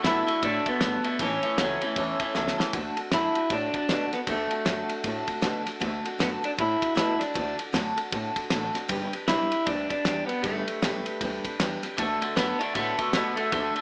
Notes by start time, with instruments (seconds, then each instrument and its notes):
0.03 upright bass F#2, clean electric guitar D3 B3 E4, steel-string acoustic guitar D3 A3 D4 F#4 A4, snare, ride
0.26 clean electric guitar D3 A3, steel-string acoustic guitar D4 F#4 A4, muted upright bass stroke, ride
0.41 upright bass A2, clean electric guitar D3 A3 D4, steel-string acoustic guitar A3 D4 F#4 A4, kick, ride
0.65 clean electric guitar D3 A3 B3, steel-string acoustic guitar D4 F#4 A4, kick, ride
0.80 upright bass G1, clean electric guitar D3 B3, steel-string acoustic guitar D3 A3 D4 F#4 A4, snare, ride
1.04 clean electric guitar D3 A3, steel-string acoustic guitar D4 F#4 A4, muted upright bass stroke, ride
1.19 upright bass A1, steel-string acoustic guitar A2 E3 A3 C#4 E4 A4, clean electric guitar A2 E3 C#4, kick, ride
1.42 clean electric guitar A2 E3, steel-string acoustic guitar A3 C#4 E4 A4, ride
1.58 upright bass C#2, steel-string acoustic guitar A2 E3 A3 C#4 E4 A4, clean electric guitar A2 F#3, snare, ride
1.81 clean electric guitar A2 E3, steel-string acoustic guitar A3 C#4 E4 A4, ride
1.96 upright bass E2, clean electric guitar A2 E3, steel-string acoustic guitar A3 C#4 E4 A4, kick, ride
2.19 clean electric guitar A2 E3, steel-string acoustic guitar A3 C#4 E4 A4, kick, ride
2.35 upright bass C#2, steel-string acoustic guitar A2 E3 A3 C#4 E4 A4, clean electric guitar A2 F#3, snare
2.48 snare
2.58 clean electric guitar A2 E3, steel-string acoustic guitar A3 C#4 E4 A4, muted upright bass stroke, snare
2.73 upright bass D2, steel-string acoustic guitar D3 A3 D4 F#4 A4, kick, ride
2.97 steel-string acoustic guitar D4 F#4 A4, muted upright bass stroke, ride
3.12 upright bass F#2, steel-string acoustic guitar D3 A3 D4 F#4 A4, clean electric guitar E4, snare, ride
3.35 steel-string acoustic guitar D4 F#4 A4, muted upright bass stroke, ride
3.50 upright bass A2, steel-string acoustic guitar A3 D4 F#4 A4, clean electric guitar D4, kick, ride
3.74 clean electric guitar D4, steel-string acoustic guitar D4 F#4 A4, muted upright bass stroke, kick, ride
3.88 upright bass B2, steel-string acoustic guitar D3 A3 D4 F#4 A4, snare, ride
4.12 clean electric guitar B3, steel-string acoustic guitar D4 F#4 A4, muted upright bass stroke, snare, ride
4.27 upright bass D2, steel-string acoustic guitar D3 A3 D4 F#4 A4, clean electric guitar A3, kick, ride
4.51 steel-string acoustic guitar D4 F#4 A4, ride
4.65 upright bass F#2, steel-string acoustic guitar D3 A3 D4 F#4 A4, snare, ride
4.88 steel-string acoustic guitar D4 F#4 A4, muted upright bass stroke, ride
5.04 upright bass A2, steel-string acoustic guitar A3 D4 F#4 A4, kick, ride
5.27 steel-string acoustic guitar D4 F#4 A4, muted upright bass stroke, kick, ride
5.42 upright bass B2, steel-string acoustic guitar D3 A3 D4 F#4 A4, snare, ride
5.65 steel-string acoustic guitar D4 F#4 A4, muted upright bass stroke, snare, ride
5.80 upright bass D2, steel-string acoustic guitar D3 A3 D4 F#4 A4, kick, ride
6.05 steel-string acoustic guitar D4 F#4 A4, muted upright bass stroke, ride
6.18 upright bass F#2, steel-string acoustic guitar D3 A3 D4 F#4 A4, clean electric guitar B3, snare, ride
6.42 steel-string acoustic guitar D4 F#4 A4, clean electric guitar D4, muted upright bass stroke, ride
6.57 upright bass A2, steel-string acoustic guitar A3 D4 F#4 A4, clean electric guitar E4, kick, ride
6.80 steel-string acoustic guitar D4 F#4 A4, muted upright bass stroke, kick, ride
6.95 upright bass B2, steel-string acoustic guitar D3 A3 D4 F#4 A4, clean electric guitar E4, snare, ride
7.19 clean electric guitar D4, steel-string acoustic guitar D4 F#4 A4, muted upright bass stroke, snare, ride
7.34 upright bass D2, steel-string acoustic guitar D3 A3 D4 F#4 A4, kick, ride
7.57 steel-string acoustic guitar D4 F#4 A4, muted upright bass stroke, ride
7.72 upright bass F#2, steel-string acoustic guitar D3 A3 D4 F#4 A4, snare, ride
7.96 steel-string acoustic guitar D4 F#4 A4, ride
8.11 upright bass A2, steel-string acoustic guitar A3 D4 F#4 A4, kick, ride
8.36 steel-string acoustic guitar D4 F#4 A4, kick, ride
8.50 upright bass A1, steel-string acoustic guitar D3 A3 D4 F#4 A4, snare, ride
8.73 steel-string acoustic guitar D4 F#4 A4, muted upright bass stroke, snare, ride
8.88 upright bass G1, steel-string acoustic guitar G3 D4 G4 B4, kick, ride
9.12 steel-string acoustic guitar D4 G4 B4, muted upright bass stroke, ride
9.27 upright bass B1, steel-string acoustic guitar G3 D4 G4 B4, clean electric guitar E4, snare, ride
9.51 steel-string acoustic guitar D4 G4 B4, muted upright bass stroke, ride
9.66 upright bass D2, steel-string acoustic guitar G3 D4 G4 B4, clean electric guitar D4, kick, ride
9.90 clean electric guitar D4, steel-string acoustic guitar D4 G4 B4, kick, ride
10.04 upright bass E2, steel-string acoustic guitar G3 D4 G4 B4, snare, ride
10.26 clean electric guitar B3, steel-string acoustic guitar G4 B4, ride
10.30 steel-string acoustic guitar D4
10.42 upright bass G1, steel-string acoustic guitar G3 D4 G4 B4, clean electric guitar A3, kick, ride
10.67 steel-string acoustic guitar D4 G4 B4, ride
10.82 upright bass B1, steel-string acoustic guitar G3 D4 G4 B4, snare, ride
11.05 steel-string acoustic guitar D4 G4 B4, muted upright bass stroke, ride
11.21 upright bass D2, steel-string acoustic guitar G3 D4 G4 B4, kick, ride
11.45 steel-string acoustic guitar D4 G4 B4, muted upright bass stroke, kick, ride
11.60 upright bass E2, steel-string acoustic guitar G3 D4 G4 B4, snare, ride
11.83 steel-string acoustic guitar D4 G4 B4, muted upright bass stroke, snare, ride
11.97 upright bass D2, clean electric guitar D3 A3, steel-string acoustic guitar D3 A3 D4 F#4 A4, kick, ride
12.21 clean electric guitar D3 A3, steel-string acoustic guitar D4 F#4 A4, muted upright bass stroke, ride
12.35 upright bass F#2, steel-string acoustic guitar D3 A3 D4 F#4 A4, clean electric guitar D3 B3, snare, ride
12.59 clean electric guitar D3 A3 D4, steel-string acoustic guitar D4 F#4 A4, muted upright bass stroke, ride
12.74 upright bass A2, clean electric guitar D3 A3 B3, steel-string acoustic guitar A3 D4 F#4 A4, kick, ride
12.99 clean electric guitar D3 A3, steel-string acoustic guitar D4 F#4 A4, kick, ride
13.13 upright bass B2, clean electric guitar D3 B3, steel-string acoustic guitar D3 A3 D4 F#4 A4, snare, ride
13.36 clean electric guitar D3 A3, steel-string acoustic guitar D4 F#4 A4, muted upright bass stroke, ride
13.52 upright bass D2, steel-string acoustic guitar D3 A3 D4 F#4 A4, clean electric guitar D3 A3, kick, ride
13.75 clean electric guitar D3 A3, steel-string acoustic guitar D4 F#4 A4, muted upright bass stroke, ride